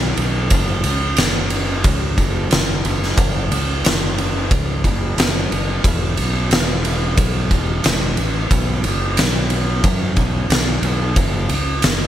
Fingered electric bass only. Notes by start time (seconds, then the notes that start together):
Already playing: B1
0.18 B1
0.51 F#1
0.84 C#2
1.18 F#1
1.85 C#2
2.18 F#1
2.52 F#1
2.85 F#1
3.18 F#1
3.52 C#2
3.84 F#1
4.51 C#2
4.84 F#1
5.18 F#1
5.51 F#1
5.85 E1
6.19 B1
6.51 E1
7.18 B1
7.51 E1
7.84 E1
8.18 A1
8.51 B1
8.85 F#1
9.18 B1
9.84 F#2
10.17 B1
10.50 B1
10.82 B1
11.17 F#1
11.50 C#2
11.84 F#1